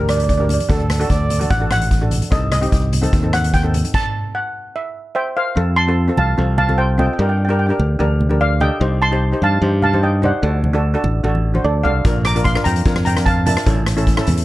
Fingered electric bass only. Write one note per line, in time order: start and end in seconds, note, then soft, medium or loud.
0.00 0.57 D2 loud
0.69 1.04 D2 loud
1.10 1.44 D2 medium
1.51 2.20 A1 loud
2.32 2.66 C2 loud
2.72 3.07 C2 medium
3.13 3.82 D#2 loud
5.57 6.08 F2 loud
6.18 6.35 C2 medium
6.38 7.07 C2 medium
7.19 7.71 G2 loud
7.79 7.97 D2 medium
8.00 8.69 D2 medium
8.81 9.33 C2 loud
9.42 9.59 G2 loud
9.62 10.31 G2 loud
10.43 10.95 D2 loud
11.04 11.21 A1 loud
11.24 11.58 A1 loud
11.64 11.83 D2 medium
11.85 12.03 C2 medium
12.05 12.57 A#1 loud
12.66 12.83 F2 medium
12.86 13.55 F2 loud
13.67 14.18 A1 loud
14.28 14.45 E2 loud